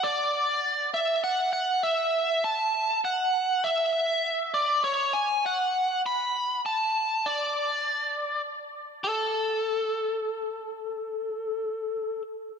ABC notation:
X:1
M:3/4
L:1/8
Q:1/4=100
K:A
V:1 name="Lead electric guitar"
d3 e f f | e2 a2 f2 | e3 d c g | f2 b2 a2 |
d4 z2 | A6- | A6 |]